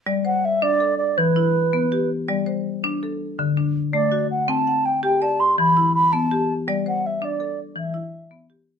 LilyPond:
<<
  \new Staff \with { instrumentName = "Flute" } { \time 12/8 \key g \major \tempo 4. = 109 r8 fis''8 e''8 d''4 d''8 b'2~ b'8 r8 | r1 r8 d''4 fis''8 | a''4 g''8 g''8 a''8 c'''8 b''4 b''8 a''4 r8 | r8 fis''8 e''8 d''4 r8 e''2 r4 | }
  \new Staff \with { instrumentName = "Marimba" } { \time 12/8 \key g \major d''8 c''4. a'4. e'4. g'4 | d''8 c''4. a'4. d'4. fis'4 | g''8 fis''4. d''4. e'4. g'4 | d''8 c''4. a'4. e'4. g'4 | }
  \new Staff \with { instrumentName = "Marimba" } { \time 12/8 \key g \major g4 r8 d'4 r8 e4 r8 b4 r8 | g4 r8 d'4 r8 d4 r8 a4 r8 | c'4 r8 g'4 r8 e4 r8 b4 r8 | g4 r8 d'4 r8 e4 r8 b4 r8 | }
>>